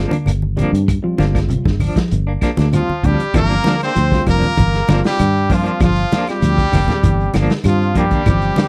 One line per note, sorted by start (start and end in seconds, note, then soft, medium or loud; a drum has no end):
0.00 0.12 F3 medium
0.00 0.14 G3 medium
0.00 0.12 A#3 medium
0.00 0.15 C4 medium
0.00 0.11 D4 medium
0.00 0.15 F4 medium
0.11 0.34 D3 medium
0.11 0.31 A#3 soft
0.11 0.30 D4 medium
0.11 closed hi-hat medium
0.11 high conga medium
0.26 0.63 G1 medium
0.26 closed hi-hat medium
0.26 high conga medium
0.26 claves medium
0.26 shekere medium
0.42 high conga medium
0.57 0.80 D3 medium
0.57 0.77 F3 medium
0.57 0.82 G3 medium
0.57 0.77 A#3 medium
0.57 0.82 C4 medium
0.57 0.77 D4 medium
0.57 0.83 D4 medium
0.57 closed hi-hat medium
0.57 low conga medium
0.57 shekere soft
0.73 0.97 G2 medium
0.73 closed hi-hat soft
0.88 muted clean electric guitar stroke medium
0.88 kick medium
0.88 closed hi-hat medium
0.88 high conga soft
0.88 low conga medium
0.88 claves medium
0.88 shekere medium
1.03 1.15 F3 medium
1.03 1.68 G3 medium
1.03 1.68 C4 medium
1.03 1.69 F4 medium
1.18 1.56 G1 medium
1.18 1.41 D3 medium
1.18 1.38 F3 medium
1.18 1.38 A#3 medium
1.18 1.38 D4 medium
1.18 snare soft
1.18 closed hi-hat soft
1.18 high conga medium
1.18 shekere soft
1.35 kick medium
1.35 snare soft
1.35 closed hi-hat soft
1.35 claves medium
1.49 1.61 C3 medium
1.49 closed hi-hat medium
1.49 high conga soft
1.49 low conga medium
1.49 shekere medium
1.65 1.90 G1 medium
1.65 1.88 D3 medium
1.65 kick medium
1.65 snare soft
1.65 high conga medium
1.80 1.99 F3 medium
1.80 2.00 D4 medium
1.80 muted clean electric guitar stroke medium
1.80 open hi-hat medium
1.80 high conga medium
1.80 low conga medium
1.80 claves medium
1.80 shekere soft
1.96 2.19 F3 medium
1.96 kick medium
1.96 snare medium
1.96 closed hi-hat medium
2.11 2.36 G1 medium
2.11 closed hi-hat medium
2.11 high conga soft
2.11 shekere medium
2.27 2.42 A#3 soft
2.27 2.42 D4 soft
2.41 2.58 F3 medium
2.41 2.58 A#3 medium
2.41 2.57 D4 medium
2.41 kick medium
2.41 snare soft
2.41 closed hi-hat medium
2.41 claves medium
2.41 shekere soft
2.57 2.82 D2 medium
2.57 2.81 D3 medium
2.57 2.77 A#3 soft
2.57 2.76 D4 soft
2.57 snare soft
2.57 closed hi-hat medium
2.57 high conga medium
2.72 3.07 F3 medium
2.72 2.89 G3 medium
2.72 2.90 C4 medium
2.72 2.90 F4 medium
2.72 3.07 F4 medium
2.72 closed hi-hat medium
2.72 high conga medium
2.72 claves medium
2.72 shekere medium
2.89 muted fingered electric bass stroke soft
2.89 high conga medium
3.03 3.16 D2 loud
3.03 3.26 D3 medium
3.03 3.23 F3 medium
3.03 3.21 G3 medium
3.03 3.35 G3 medium
3.03 3.21 C4 medium
3.03 3.23 D4 medium
3.03 3.22 D4 medium
3.03 3.35 G4 medium
3.03 muted clean electric guitar stroke medium
3.03 kick medium
3.03 closed hi-hat medium
3.03 low conga medium
3.03 shekere soft
3.20 closed hi-hat medium
3.34 3.59 G1 medium
3.34 3.57 E3 loud
3.34 3.53 F3 medium
3.34 3.77 F3 medium
3.34 3.75 G3 medium
3.34 3.54 A#3 medium
3.34 3.76 C4 medium
3.34 3.54 D4 medium
3.34 3.79 A#4 loud
3.34 kick medium
3.34 closed hi-hat medium
3.34 high conga soft
3.34 low conga medium
3.34 claves medium
3.34 shekere medium
3.38 3.80 A#3 loud
3.51 closed hi-hat soft
3.51 shekere soft
3.64 3.88 D3 medium
3.64 3.81 F3 medium
3.64 3.81 A#3 medium
3.64 3.81 D4 medium
3.64 snare medium
3.64 closed hi-hat soft
3.64 high conga medium
3.64 shekere medium
3.80 4.00 A#3 soft
3.80 4.25 C4 loud
3.80 3.99 D4 soft
3.80 4.25 C5 loud
3.80 snare soft
3.80 closed hi-hat soft
3.80 claves medium
3.80 shekere soft
3.95 4.21 D2 medium
3.95 4.18 F3 medium
3.95 closed hi-hat medium
3.95 high conga soft
3.95 shekere medium
4.12 4.52 G3 medium
4.12 4.53 C4 medium
4.12 4.53 F4 medium
4.12 kick medium
4.12 snare soft
4.12 closed hi-hat soft
4.12 shekere soft
4.26 4.39 F1 medium
4.26 4.49 F3 medium
4.26 4.45 F3 medium
4.26 4.46 A#3 medium
4.26 5.01 A#3 medium
4.26 4.46 D4 medium
4.26 5.01 A#4 loud
4.26 kick medium
4.26 closed hi-hat medium
4.26 claves medium
4.26 shekere medium
4.42 closed hi-hat soft
4.42 high conga medium
4.42 low conga medium
4.42 shekere soft
4.57 4.82 G1 medium
4.57 4.80 E3 medium
4.57 kick medium
4.57 closed hi-hat medium
4.57 high conga soft
4.57 low conga medium
4.57 shekere medium
4.73 snare soft
4.73 closed hi-hat soft
4.73 shekere soft
4.87 5.01 G1 loud
4.87 5.11 D3 medium
4.87 5.07 F3 medium
4.87 5.20 G3 medium
4.87 5.07 A#3 medium
4.87 5.21 C4 medium
4.87 5.08 D4 medium
4.87 5.21 F4 medium
4.87 snare medium
4.87 closed hi-hat soft
4.87 high conga loud
4.87 claves medium
4.87 shekere medium
5.04 5.54 G3 medium
5.04 5.55 G4 loud
5.04 snare medium
5.04 closed hi-hat soft
5.04 shekere soft
5.19 5.68 G2 medium
5.19 5.42 G3 medium
5.19 closed hi-hat medium
5.19 high conga medium
5.19 claves medium
5.19 shekere medium
5.37 shekere soft
5.50 5.73 F3 medium
5.50 5.66 F3 medium
5.50 5.82 F3 medium
5.50 5.91 G3 medium
5.50 5.66 A#3 medium
5.50 5.91 C4 medium
5.50 5.65 D4 medium
5.50 5.92 F4 medium
5.50 kick medium
5.50 open hi-hat medium
5.50 shekere medium
5.54 5.82 F4 medium
5.65 5.84 A#3 soft
5.65 5.84 D4 soft
5.65 closed hi-hat soft
5.65 shekere soft
5.80 6.05 G1 medium
5.80 6.03 F3 loud
5.80 6.25 F3 medium
5.80 6.25 F4 loud
5.80 kick medium
5.80 snare soft
5.80 closed hi-hat medium
5.80 high conga soft
5.80 low conga medium
5.80 claves medium
5.80 shekere medium
5.96 closed hi-hat soft
5.96 shekere soft
6.12 6.30 F3 medium
6.12 6.31 A#3 medium
6.12 6.31 D4 medium
6.12 snare medium
6.12 closed hi-hat medium
6.12 high conga loud
6.12 shekere medium
6.27 6.60 G3 medium
6.27 7.36 G3 medium
6.27 6.60 C4 medium
6.27 6.61 F4 medium
6.27 7.35 G4 loud
6.27 snare soft
6.27 closed hi-hat soft
6.27 claves medium
6.27 shekere soft
6.41 6.66 D2 medium
6.41 6.64 F3 medium
6.41 closed hi-hat medium
6.41 shekere medium
6.58 kick medium
6.58 closed hi-hat soft
6.58 shekere soft
6.72 6.85 F1 loud
6.72 6.95 D3 medium
6.72 6.92 F3 medium
6.72 6.92 A#3 medium
6.72 6.93 D4 medium
6.72 kick medium
6.72 open hi-hat medium
6.72 high conga medium
6.72 claves medium
6.72 shekere medium
6.88 7.29 G3 medium
6.88 7.29 C4 medium
6.88 7.30 G4 medium
6.88 snare soft
6.88 closed hi-hat soft
6.88 high conga medium
6.88 low conga medium
6.88 shekere soft
7.03 7.27 G1 medium
7.03 7.26 E3 medium
7.03 kick medium
7.03 closed hi-hat medium
7.03 high conga soft
7.03 low conga medium
7.03 shekere medium
7.20 shekere soft
7.34 7.47 G1 loud
7.34 7.56 D3 medium
7.34 7.53 F3 medium
7.34 7.54 A#3 medium
7.34 7.54 D4 medium
7.34 snare medium
7.34 closed hi-hat soft
7.34 high conga medium
7.34 claves medium
7.34 shekere medium
7.50 snare medium
7.50 closed hi-hat soft
7.50 shekere soft
7.64 8.13 G2 medium
7.64 7.95 F3 medium
7.64 7.97 G3 medium
7.64 7.88 G3 medium
7.64 7.97 C4 medium
7.64 7.97 F4 medium
7.64 7.95 F4 medium
7.64 closed hi-hat medium
7.64 high conga medium
7.64 claves medium
7.64 shekere medium
7.82 shekere soft
7.95 8.18 F3 medium
7.95 8.11 F3 medium
7.95 8.68 G3 medium
7.95 8.11 A#3 medium
7.95 8.10 D4 medium
7.95 kick medium
7.95 closed hi-hat medium
7.95 shekere medium
7.99 8.68 G4 medium
8.11 8.30 A#3 soft
8.11 8.29 D4 medium
8.11 kick medium
8.11 closed hi-hat soft
8.11 high conga medium
8.11 shekere soft
8.26 8.51 G1 medium
8.26 8.49 E3 medium
8.26 8.68 F3 medium
8.26 8.67 G3 medium
8.26 8.68 C4 medium
8.26 kick loud
8.26 closed hi-hat medium
8.26 high conga soft
8.26 low conga medium
8.26 claves medium
8.26 shekere medium
8.42 closed hi-hat soft
8.42 shekere soft
8.56 8.68 D3 medium
8.56 8.68 F3 soft
8.56 8.68 A#3 medium
8.56 8.68 D4 medium
8.56 snare medium
8.56 closed hi-hat medium
8.56 high conga medium
8.56 shekere medium